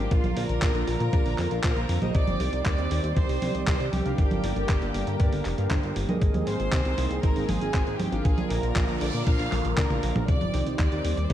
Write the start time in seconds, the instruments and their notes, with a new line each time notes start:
Already playing: analog synth pad A#3
0.00 analog polysynth D4 F4 A#4 F5
0.11 analog synth bass A#1, analog synth pad D3 F3 F4 A#4, violin section F4 F5, kick, closed hi-hat
0.24 analog synth bass A#1, closed hi-hat, high conga
0.37 analog synth bass A#1, analog polysynth D4 F4 A#4 D5, violin section A#4 A#5, open hi-hat
0.49 analog synth bass A#1, closed hi-hat
0.62 analog synth bass A#1, kick, clap, closed hi-hat
0.75 analog synth bass A#1, analog polysynth D4 F4 A#4 D5, closed hi-hat
0.88 analog synth bass A#1, violin section A#4 A#5, open hi-hat
1.00 analog synth bass A#2, closed hi-hat
1.13 analog synth bass A#1, analog polysynth D4 F4 A#4 D5, kick, closed hi-hat
1.26 analog synth bass A#1, open hi-hat
1.38 analog synth bass F2, clap, open hi-hat
1.51 analog synth bass A#1, analog polysynth D4 F4 A#4 F5, closed hi-hat
1.64 analog synth bass A#1, analog polysynth D4 F4 A#4 C5, violin section A#4 A#5, kick, clap, closed hi-hat
1.76 analog synth bass A#1, closed hi-hat
1.89 analog synth bass F2, open hi-hat
2.02 analog synth bass A#1, analog polysynth D#4 G4 C5 D#5, closed hi-hat, high conga
2.15 analog synth bass C2, analog synth pad D#3 G3 C4 G4 D5, violin section D5 D6, kick, closed hi-hat
2.27 analog synth bass G1, closed hi-hat, high conga
2.40 analog synth bass C2, analog polysynth D#4 G4 C5 D5, open hi-hat
2.53 analog synth bass C2, closed hi-hat
2.66 analog synth bass D#2, violin section D5 D6, kick, clap, closed hi-hat
2.78 analog synth bass D#2, analog polysynth D#4 G4 C5 D5, closed hi-hat
2.91 analog synth bass D#2, open hi-hat
3.04 analog synth bass D#2, closed hi-hat
3.17 analog synth bass C2, analog polysynth D#4 G4 C5 D5, violin section C5 C6, kick, closed hi-hat
3.29 analog synth bass C2, open hi-hat
3.42 analog synth bass C2, open hi-hat, high conga
3.55 analog synth bass C2, analog polysynth D#4 G4 C5 D#5, closed hi-hat
3.67 analog synth bass C2, analog polysynth D#4 G4 C5 D5, violin section C5 C6, kick, clap, closed hi-hat
3.80 analog synth bass C2, closed hi-hat
3.93 analog synth bass C2, violin section G4 G5, open hi-hat, high conga
4.06 analog synth bass C2, analog polysynth D4 G4 A#4 F5, closed hi-hat
4.18 analog synth bass G1, analog synth pad D3 A#3 A#4, kick, closed hi-hat
4.31 analog synth bass G1, closed hi-hat, high conga
4.44 analog synth bass G1, analog polysynth D4 G4 A#4 D5, open hi-hat
4.56 analog synth bass G1, closed hi-hat
4.69 analog synth bass G1, kick, clap, closed hi-hat
4.82 analog synth bass G1, analog polysynth D4 G4 A#4 D5, closed hi-hat
4.94 analog synth bass G1, open hi-hat
5.07 analog synth bass G2, closed hi-hat
5.20 analog synth bass G2, analog polysynth D4 G4 A#4 D5, kick, closed hi-hat
5.33 analog synth bass G1, open hi-hat
5.45 analog synth bass F1, clap, open hi-hat
5.58 analog synth bass G2, analog polysynth D4 G4 A#4 F5, closed hi-hat
5.71 analog synth bass G1, analog polysynth D4 G4 A#4 C5, kick, clap, closed hi-hat
5.83 analog synth bass G1, closed hi-hat
5.96 analog synth bass G1, open hi-hat
6.09 analog synth bass G2, analog polysynth D#4 G#4 A#4 D#5, closed hi-hat, high conga
6.22 analog synth bass G#1, analog synth pad D#3 G#3 A#3 C4 G#4, kick, closed hi-hat
6.34 analog synth bass D#2, closed hi-hat, high conga
6.47 analog synth bass G#1, analog polysynth D#4 G#4 A#4 C5, violin section C5 C6, open hi-hat
6.60 analog synth bass G#1, closed hi-hat
6.72 analog synth bass C2, kick, clap, closed hi-hat
6.85 analog synth bass C2, analog polysynth D#4 G#4 A#4 C5, closed hi-hat
6.98 analog synth bass C2, open hi-hat
7.11 analog synth bass C2, closed hi-hat
7.23 analog synth bass G#1, analog polysynth D#4 G#4 A#4 C5, violin section A#4 A#5, kick, closed hi-hat
7.36 analog synth bass G#1, open hi-hat
7.49 analog synth bass G#1, violin section G#4 G#5, open hi-hat, high conga
7.61 analog synth bass G#1, analog polysynth D#4 G#4 A#4 D#5, closed hi-hat
7.74 analog synth bass G#1, analog polysynth D#4 G#4 A#4 C5, kick, clap, closed hi-hat
7.87 analog synth bass G#1, closed hi-hat
7.99 analog synth bass G#1, violin section G4 G5, open hi-hat, high conga
8.12 analog synth bass G#1, analog polysynth D4 F4 A#4 F5, closed hi-hat
8.25 analog synth bass A#1, analog synth pad D3 F3 A#3 F4 A#4, violin section G#4 G#5, kick, closed hi-hat, noise sweep
8.38 analog synth bass A#1, closed hi-hat, high conga
8.50 analog synth bass A#1, analog polysynth D4 F4 A#4 D5, violin section A#4 A#5, open hi-hat
8.63 analog synth bass A#1, closed hi-hat
8.76 analog synth bass A#1, kick, clap, closed hi-hat
8.88 analog synth bass A#1, analog polysynth D4 F4 A#4 D5, closed hi-hat
9.01 analog synth bass A#1, violin section D5 D6, open hi-hat
9.14 analog synth bass A#2, closed hi-hat
9.26 analog synth bass A#2, analog polysynth D4 F4 A#4 D5, violin section F5 F6, kick, closed hi-hat
9.39 analog synth bass A#1, open hi-hat
9.52 analog synth bass A#1, clap, open hi-hat, high tom
9.65 analog synth bass A#1, closed hi-hat
9.77 analog synth bass A#2, analog polysynth D4 F4 A#4 D5, violin section A#4 A#5, kick, clap, closed hi-hat, mid tom
9.90 analog synth bass A#1, analog polysynth D4 F4 A#4 F5, closed hi-hat, mid tom
10.03 analog synth bass A#1, open hi-hat
10.16 analog synth bass A#1, closed hi-hat, mid tom, high conga
10.28 analog synth bass C2, analog synth pad D#3 G3 C4 G4 D5, violin section D5 D6, kick, closed hi-hat
10.41 analog synth bass G1, closed hi-hat, high conga
10.54 analog synth bass C2, analog polysynth D#4 G4 C5 D5, open hi-hat
10.67 analog synth bass C2, closed hi-hat
10.78 analog synth bass D#2, violin section D5 D6, kick, clap, closed hi-hat
10.92 analog synth bass D#2, analog polysynth D#4 G4 C5 D5, closed hi-hat
11.05 analog synth bass D#2, open hi-hat
11.17 analog synth bass D#2, closed hi-hat
11.29 violin section C5, closed hi-hat